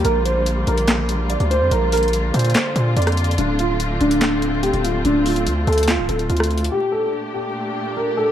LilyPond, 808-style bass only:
\new Staff \with { instrumentName = "808-style bass" } { \clef bass \time 4/4 \key g \minor \tempo 4 = 144 bes,,4. bes,,4.~ bes,,16 d,8 f,16 | bes,,4. bes,8 r8 bes,8 f,4 | d,,4. d,,4.~ d,,16 d,,8. | d,,4 d,8 d,8. c,,16 d,,8 d,4 |
r1 | }